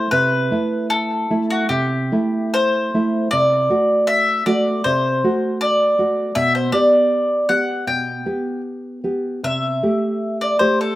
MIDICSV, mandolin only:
0, 0, Header, 1, 2, 480
1, 0, Start_track
1, 0, Key_signature, 1, "major"
1, 0, Tempo, 798935
1, 67, Time_signature, 4, 2, 24, 8
1, 1988, Tempo, 767263
1, 3428, Tempo, 742574
1, 4388, Tempo, 781250
1, 6758, End_track
2, 0, Start_track
2, 0, Title_t, "Mandolin"
2, 0, Program_c, 0, 25
2, 67, Note_on_c, 0, 71, 92
2, 514, Note_off_c, 0, 71, 0
2, 541, Note_on_c, 0, 69, 85
2, 873, Note_off_c, 0, 69, 0
2, 904, Note_on_c, 0, 66, 77
2, 1011, Note_off_c, 0, 66, 0
2, 1015, Note_on_c, 0, 67, 73
2, 1496, Note_off_c, 0, 67, 0
2, 1524, Note_on_c, 0, 72, 92
2, 1965, Note_off_c, 0, 72, 0
2, 1988, Note_on_c, 0, 74, 97
2, 2438, Note_off_c, 0, 74, 0
2, 2466, Note_on_c, 0, 76, 91
2, 2688, Note_off_c, 0, 76, 0
2, 2708, Note_on_c, 0, 74, 85
2, 2932, Note_off_c, 0, 74, 0
2, 2947, Note_on_c, 0, 72, 85
2, 3402, Note_off_c, 0, 72, 0
2, 3427, Note_on_c, 0, 74, 92
2, 3880, Note_off_c, 0, 74, 0
2, 3907, Note_on_c, 0, 76, 94
2, 4017, Note_off_c, 0, 76, 0
2, 4034, Note_on_c, 0, 72, 68
2, 4140, Note_off_c, 0, 72, 0
2, 4148, Note_on_c, 0, 74, 91
2, 4602, Note_off_c, 0, 74, 0
2, 4630, Note_on_c, 0, 78, 78
2, 4849, Note_off_c, 0, 78, 0
2, 4866, Note_on_c, 0, 79, 69
2, 5316, Note_off_c, 0, 79, 0
2, 5830, Note_on_c, 0, 76, 86
2, 6397, Note_off_c, 0, 76, 0
2, 6425, Note_on_c, 0, 74, 72
2, 6534, Note_off_c, 0, 74, 0
2, 6536, Note_on_c, 0, 72, 67
2, 6653, Note_off_c, 0, 72, 0
2, 6669, Note_on_c, 0, 69, 69
2, 6758, Note_off_c, 0, 69, 0
2, 6758, End_track
0, 0, End_of_file